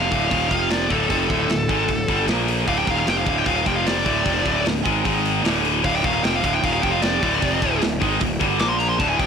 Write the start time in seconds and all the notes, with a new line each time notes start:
Already playing: F3 F5
0.10 D1 D2 A2 D3, kick, open hi-hat
0.29 D#1 D#2 A#2 D#3, kick, open hi-hat
0.50 F1 F2 C3 F3, kick, open hi-hat
0.71 D5, snare, open hi-hat
0.89 D1 D2 A2 D3 A4, kick, open hi-hat
1.09 F1 F2 C3 F3 A4, kick, open hi-hat
1.30 D1 D2 A2 D3, kick, open hi-hat
1.48 D1 D2 A2, snare, open hi-hat
1.69 G#1 G#2 D#3 G#3, kick, open hi-hat
1.88 D1 D2 A2, kick, open hi-hat
2.08 G1 G2 D3 G3, kick, open hi-hat
2.27 A#1 A#2 F3 A#3, snare, open hi-hat
2.48 open hi-hat
2.67 D1 D2 A2 D3 F5, kick, open hi-hat
2.78 G5
2.86 D#1 D#2 A#2 D#3, kick, open hi-hat
2.90 F5
3.00 F5
3.06 F1 F2 C3 F3 G5, snare, open hi-hat
3.18 F5
3.26 D1 D2 A2 D3 F5, kick, open hi-hat
3.38 G5
3.46 D#1 D#2 A#2 D#3 F5, kick, open hi-hat
3.56 F5
3.66 F1 F2 C3 F3 G5, kick, open hi-hat
3.76 F5
3.87 D5, snare, open hi-hat
4.04 D1 D2 A2 D3, kick, open hi-hat
4.24 F1 F2 C3 F3, kick, open hi-hat
4.44 D1 D2 A2 D3, kick, open hi-hat
4.66 D1 D2 A2, snare, open hi-hat
4.85 G#1 G#2 D#3 G#3, kick, open hi-hat
5.05 G#1 G#2 D#3 G#3, kick, open hi-hat
5.26 open hi-hat
5.44 D1 D2 A2 D3, snare, open hi-hat
5.65 open hi-hat
5.82 D1 D2 A2 D3 F5, kick, open hi-hat
5.96 G5
6.04 D#1 D#2 A#2 D#3 F5, kick, open hi-hat
6.14 F5
6.24 F1 F2 C3 F3 G5, snare, open hi-hat
6.36 F5
6.43 D1 D2 A2 D3 F5, kick, open hi-hat
6.55 G5
6.63 D#1 D#2 A#2 D#3 F5, kick, open hi-hat
6.73 F5
6.81 F1 F2 C3 F3 G5, kick, open hi-hat
6.92 F5
7.02 D5, snare, open hi-hat
7.22 D1 D2 A2 D3, kick, open hi-hat
7.41 F1 F2 C3 F3, kick, open hi-hat
7.61 D1 D2 A2 D3, kick, open hi-hat
7.81 D1 D2 A2, snare, open hi-hat
8.00 G#1 G#2 D#3 G#3, kick, open hi-hat
8.20 D1 D2 A2, kick, open hi-hat
8.39 G1 G2 D3 G3, kick, open hi-hat
8.59 A#1 A#2 F3 A#3 D6, snare, open hi-hat
8.69 C6
8.79 A#5, open hi-hat
8.89 C6
8.99 D1 D2 A2 D3 A5, kick, open hi-hat
9.08 G#5
9.18 D#1 D#2 A#2 D#3 G5, kick, open hi-hat